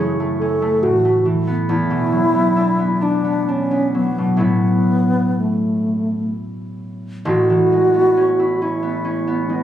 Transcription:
Already playing: F#2 C#3 E3 A3 G#4
0.00 C#4
0.20 A3
0.39 C#4 A4
0.62 A3
0.83 A2 F#4
1.05 A3
1.25 E3
1.47 B3
1.69 E2 E4
1.90 B2
2.12 F#3
2.35 B3
2.57 D4
2.79 B3
3.01 D4
3.24 B3
3.48 C#4 D4
3.71 B3
3.95 F#3 B3
4.18 B2
4.37 A2 F#3 B3 C#4 E4
4.44 B3
5.40 A3
7.25 A1 A2 F#4
7.50 E3
7.72 G#3
7.94 B3
8.17 C#4
8.39 E4
8.62 C#4 E4
8.83 B3
9.05 C#4
9.27 B3
9.49 G#3 B3

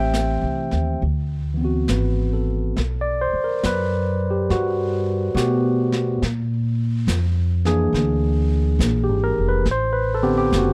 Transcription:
Already playing: A1 E3 A3 C4 G4 C5 E5 G5
0.14 snare, hi-hat pedal
0.42 C2
0.71 D#2, snare
1.02 D2, brush sweep
1.54 E3 B3
1.61 C4 F#4
1.88 G#1 B4, snare, hi-hat pedal
2.33 A4
2.77 B1, brush sweep, snare
3.01 D5
3.21 C5
3.33 muted upright bass stroke
3.44 A#4
3.63 F#2 B4, snare, hi-hat pedal
4.31 G4
4.50 G2 F#4, brush sweep, snare
5.35 B2 A3 B3 F#4 G4, snare, hi-hat pedal
5.92 snare
6.22 A#2, brush sweep, snare
7.07 F2, snare, hi-hat pedal
7.65 E3 A#3 D4 G#4, snare
7.93 D2, brush sweep, snare
8.79 A#1, snare, hi-hat pedal
9.04 G4
9.08 G#1
9.24 A#4
9.38 F1
9.49 B4
9.65 A1, brush sweep, snare
9.71 C5
9.93 B4
10.14 A4
10.23 D3 B3 C4 G4
10.37 G4
10.52 F#1, snare, hi-hat pedal
10.58 F#4

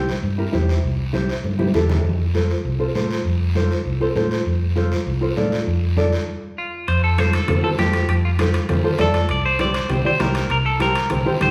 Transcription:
Already playing: C2
0.08 high conga, short guiro
0.23 G2, long guiro
0.38 E4 G4 A#4
0.52 E2 E4 G4 C5, high conga, short guiro
0.69 short guiro
0.84 C2, long guiro
1.13 E4 G4 C5, high conga, short guiro
1.29 short guiro
1.44 G2, high conga, long guiro
1.59 E4 G4 C5, high conga
1.74 E2 E4 G4 A4, low conga, short guiro
1.89 low conga, short guiro
2.05 F2, long guiro
2.34 F4 A4 C5, high conga, short guiro
2.50 short guiro
2.65 C2, long guiro
2.79 F4 A4 C5
2.94 A2 F4 A4 C5, high conga, short guiro
3.11 short guiro
3.25 F2, long guiro
3.55 F4 A4 C5, high conga, short guiro
3.71 short guiro
3.85 C2, long guiro
4.00 F4 A4 C5
4.15 A2 F4 A4 C5, high conga, short guiro
4.31 short guiro
4.46 F2, long guiro
4.76 F4 A4 C5, high conga, short guiro
4.92 high conga, short guiro
5.06 C2, long guiro
5.21 F4 A4 C5
5.36 A2 F4 A4 D5, high conga, short guiro
5.52 short guiro
5.67 F2, long guiro
5.96 F4 A4 D5, high conga, short guiro
6.12 short guiro
6.58 F4
6.88 F2 C5, high timbale, long guiro
7.04 A4
7.18 F4 A4 C5, high conga, high timbale, short guiro
7.33 A4, high conga, high timbale, short guiro
7.48 F2 F4 A4 C5, low conga, high timbale, long guiro
7.63 F4 A4 C5
7.78 F2 F4 G4 A4 C5, high conga, high timbale, low timbale, short guiro
7.93 high timbale, short guiro
8.09 F2 G4, high timbale, long guiro
8.25 F4
8.39 F4 G4 A4 C5, high conga, high timbale, short guiro
8.54 high timbale, short guiro
8.69 F2 F4 A4 C5, low conga, high timbale, long guiro
8.83 F4 A4 C5
8.98 F2 F4 A4 D5, high conga, high timbale, low timbale, short guiro
9.14 high timbale, short guiro
9.29 C2 D5, high timbale, long guiro
9.46 C5
9.59 E4 G4 C5 D5, high conga, high timbale, short guiro
9.74 C5, high timbale, short guiro
9.89 C2 E4 G4 C5, low conga, high timbale, long guiro
10.04 E4 G4 C5 D5
10.20 C2 E4 G4 A#4 C5, high conga, high timbale, low timbale, short guiro
10.35 high timbale, short guiro
10.50 C2 A#4, high timbale, long guiro
10.66 A4
10.79 E4 G4 A#4 C5, high conga, high timbale, short guiro
10.95 high timbale, short guiro
11.10 C2 E4 G4 C5, low conga, high timbale, long guiro
11.25 E4 G4 C5
11.40 C2 E4 G4 C5, high conga, low conga, high timbale, short guiro

